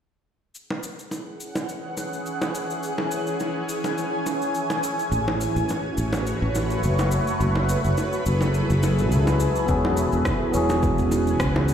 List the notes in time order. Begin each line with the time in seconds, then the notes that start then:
0.53 E3 C#4 G#4 F#5, cabasa
0.70 high bongo
0.83 cabasa
0.99 cabasa
1.11 high bongo, cabasa
1.40 cabasa
1.55 high bongo, cabasa
1.69 cabasa
1.97 high bongo, cabasa
2.13 cabasa
2.26 cabasa
2.42 high bongo, cabasa
2.55 cabasa
2.70 cabasa
2.83 G#5, cabasa
2.98 high bongo
3.11 cabasa
3.27 cabasa
3.40 high bongo, cabasa
3.69 cabasa
3.84 high bongo, cabasa
3.98 cabasa
4.26 high bongo, cabasa
4.42 cabasa
4.55 cabasa
4.70 high bongo, cabasa
4.83 cabasa
4.99 cabasa
5.11 A1 A3 F#4 B4 C#5, cabasa
5.28 high bongo
5.41 cabasa
5.56 A1, cabasa
5.69 high bongo, cabasa
5.98 A1, cabasa
6.13 high bongo, cabasa
6.27 cabasa
6.42 A1
6.55 high bongo, cabasa
6.70 cabasa
6.83 F#1, cabasa
6.99 high bongo, cabasa
7.11 cabasa
7.27 cabasa
7.40 F#1 F#3 E4 G#4 A4, cabasa
7.55 high bongo
7.69 cabasa
7.84 F#1, cabasa
7.97 high bongo, cabasa
8.13 cabasa
8.26 F#1, cabasa
8.41 high bongo, cabasa
8.54 cabasa
8.70 F#1, cabasa
8.83 high bongo, cabasa
8.99 cabasa
9.12 C#2, cabasa
9.27 high bongo, cabasa
9.40 cabasa
9.55 cabasa
9.66 E1 E3 B3 C#4 F#4 G#4, kick, cabasa
9.71 G#4
9.85 high bongo
9.97 cabasa
10.12 E1, cabasa
10.25 kick, cross-stick, high bongo, cabasa
10.52 E1 B3 C#4 F#4, cabasa
10.57 G#4
10.69 high bongo, cabasa
10.83 kick, cabasa
10.98 E1, cabasa
11.11 high bongo, cabasa
11.27 cabasa
11.40 C#2, kick, cross-stick, cabasa
11.56 high bongo
11.68 cabasa